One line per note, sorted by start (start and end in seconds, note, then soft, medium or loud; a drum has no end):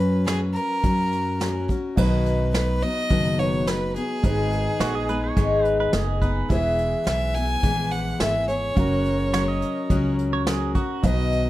0.00 0.55 F#2 medium
0.00 0.25 F#3 medium
0.00 0.26 C#4 medium
0.00 0.27 F#4 medium
0.00 0.23 B4 medium
0.00 0.27 B4 medium
0.26 0.82 F#3 medium
0.26 0.83 C#4 medium
0.26 0.83 F#4 medium
0.26 0.39 G#4 medium
0.26 0.84 B4 medium
0.26 snare loud
0.26 closed hi-hat medium
0.53 1.64 A#4 loud
0.53 closed hi-hat medium
0.83 1.69 F#2 medium
0.83 1.39 F#3 medium
0.83 1.40 C#4 medium
0.83 1.41 F#4 medium
0.83 1.41 A#4 medium
0.83 kick loud
0.83 closed hi-hat medium
1.12 closed hi-hat medium
1.40 1.69 F#3 medium
1.40 1.69 C#4 medium
1.40 1.68 F#4 medium
1.40 1.67 A#4 medium
1.40 snare loud
1.40 closed hi-hat medium
1.68 1.97 C#4 soft
1.68 1.98 F#4 medium
1.68 1.97 A#4 soft
1.68 kick medium
1.68 closed hi-hat medium
1.96 2.82 B1 medium
1.96 2.54 B2 medium
1.96 2.54 D#3 medium
1.96 2.52 F#3 medium
1.96 2.54 B3 medium
1.96 3.35 D#4 medium
1.96 2.55 D#4 medium
1.96 3.36 F#4 medium
1.96 2.50 B4 medium
1.96 2.55 B4 medium
1.96 3.37 B4 medium
1.96 kick loud
1.96 crash medium
2.26 closed hi-hat medium
2.53 2.82 F#3 medium
2.53 2.82 B3 medium
2.53 2.81 D#4 medium
2.53 2.84 B4 loud
2.53 2.80 B4 medium
2.53 snare loud
2.53 closed hi-hat medium
2.81 3.10 F#3 soft
2.81 3.10 B3 soft
2.81 3.10 D#4 soft
2.81 3.10 B4 soft
2.81 3.40 D#5 loud
2.81 closed hi-hat medium
3.10 3.95 F#1 medium
3.10 3.67 B2 medium
3.10 3.67 D#3 medium
3.10 3.65 F#3 medium
3.10 3.67 B3 medium
3.10 3.67 D#4 medium
3.10 3.68 B4 medium
3.10 kick loud
3.10 closed hi-hat medium
3.38 4.21 D#4 soft
3.38 4.24 F#4 soft
3.38 4.24 B4 soft
3.38 3.69 C#5 loud
3.38 closed hi-hat medium
3.67 3.95 F#3 medium
3.67 3.96 B3 medium
3.67 3.95 D#4 medium
3.67 3.95 B4 medium
3.67 3.94 B4 medium
3.67 snare loud
3.67 closed hi-hat medium
3.95 4.24 F#3 soft
3.95 4.23 B3 soft
3.95 4.23 D#4 soft
3.95 5.61 G#4 medium
3.95 4.24 B4 soft
3.95 closed hi-hat medium
4.23 4.66 G#1 loud
4.23 4.80 G#2 medium
4.23 4.80 D#3 medium
4.23 4.79 G#3 medium
4.23 4.80 B3 medium
4.23 6.46 D#4 medium
4.23 4.80 D#4 medium
4.23 6.47 G#4 medium
4.23 4.81 G#4 medium
4.23 6.47 B4 medium
4.23 kick loud
4.23 closed hi-hat medium
4.52 closed hi-hat medium
4.79 5.28 A#1 medium
4.79 5.08 G#3 medium
4.79 5.09 B3 medium
4.79 5.08 D#4 medium
4.79 4.94 F#4 medium
4.79 5.07 G#4 medium
4.79 snare loud
4.79 closed hi-hat medium
4.95 5.09 G#4 medium
5.08 5.36 G#3 soft
5.08 5.36 B3 soft
5.08 5.37 D#4 soft
5.08 5.37 G#4 medium
5.08 5.23 B4 medium
5.08 closed hi-hat medium
5.24 5.65 C#5 loud
5.37 5.85 G#1 medium
5.37 5.94 G#2 medium
5.37 5.94 D#3 medium
5.37 5.92 G#3 medium
5.37 5.93 B3 medium
5.37 5.94 D#4 loud
5.37 5.94 G#4 loud
5.37 kick loud
5.37 closed hi-hat medium
5.65 5.78 B4 loud
5.65 closed hi-hat medium
5.80 5.94 B4 medium
5.93 6.42 F#1 medium
5.93 6.22 G#3 medium
5.93 6.22 B3 medium
5.93 6.21 D#4 medium
5.93 6.21 G#4 medium
5.93 snare loud
5.93 closed hi-hat medium
6.22 6.50 G#3 soft
6.22 6.50 B3 soft
6.22 6.50 D#4 medium
6.22 6.50 G#4 medium
6.22 6.49 B4 medium
6.22 kick medium
6.22 closed hi-hat medium
6.49 6.93 E1 medium
6.49 7.07 E3 medium
6.49 7.05 G#3 medium
6.49 7.06 B3 medium
6.49 8.72 E4 medium
6.49 7.06 E4 medium
6.49 8.73 G#4 medium
6.49 7.07 G#4 medium
6.49 8.74 B4 medium
6.49 7.03 E5 medium
6.49 kick loud
6.49 closed hi-hat medium
6.79 closed hi-hat medium
7.06 7.55 B1 medium
7.06 7.35 G#3 medium
7.06 7.35 B3 medium
7.06 7.35 E4 medium
7.06 7.34 G#4 medium
7.06 7.36 E5 loud
7.06 snare loud
7.06 closed hi-hat medium
7.34 7.63 B3 soft
7.34 7.63 E4 soft
7.34 7.63 G#4 soft
7.34 7.93 G#5 loud
7.34 closed hi-hat medium
7.63 8.12 A#1 medium
7.63 8.20 E3 medium
7.63 8.19 G#3 medium
7.63 8.20 B3 medium
7.63 8.21 E4 medium
7.63 8.21 G#4 medium
7.63 kick medium
7.63 closed hi-hat medium
7.91 8.21 F#5 loud
7.91 closed hi-hat medium
8.20 8.68 G#1 medium
8.20 8.48 G#3 medium
8.20 8.49 B3 medium
8.20 8.48 E4 medium
8.20 8.47 G#4 medium
8.20 8.47 E5 medium
8.20 snare loud
8.20 closed hi-hat medium
8.48 8.77 B3 soft
8.48 8.77 E4 soft
8.48 8.77 G#4 soft
8.48 10.14 C#5 medium
8.48 closed hi-hat medium
8.75 9.62 F#1 medium
8.75 9.33 F#3 medium
8.75 10.99 C#4 medium
8.75 9.33 C#4 medium
8.75 11.00 F#4 medium
8.75 9.34 F#4 medium
8.75 9.34 A#4 medium
8.75 11.00 A#4 medium
8.75 kick medium
8.75 closed hi-hat medium
9.05 closed hi-hat medium
9.33 9.90 F#3 medium
9.33 9.89 C#4 medium
9.33 9.91 F#4 medium
9.33 9.90 A#4 medium
9.33 9.47 C#5 medium
9.33 snare medium
9.33 closed hi-hat medium
9.48 10.30 D#5 medium
9.62 closed hi-hat medium
9.90 10.75 C#2 medium
9.90 10.46 F#3 medium
9.90 10.46 C#4 medium
9.90 10.47 F#4 medium
9.90 10.48 A#4 medium
9.90 kick medium
9.90 closed hi-hat medium
10.19 closed hi-hat medium
10.33 10.47 C#5 medium
10.47 10.75 F#3 medium
10.47 10.76 C#4 medium
10.47 10.75 F#4 medium
10.47 10.75 G#4 medium
10.47 10.74 A#4 medium
10.47 snare loud
10.47 closed hi-hat medium
10.75 11.04 C#4 soft
10.75 11.03 F#4 medium
10.75 11.04 F#4 medium
10.75 11.03 A#4 medium
10.75 kick medium
10.75 closed hi-hat medium
11.02 11.50 B1 medium
11.02 11.50 B2 medium
11.02 11.50 D#3 medium
11.02 11.50 F#3 medium
11.02 11.50 B3 medium
11.02 11.50 D#4 medium
11.02 11.50 F#4 medium
11.02 11.50 B4 medium
11.02 11.50 D#5 medium
11.02 kick loud
11.02 closed hi-hat medium
11.32 closed hi-hat medium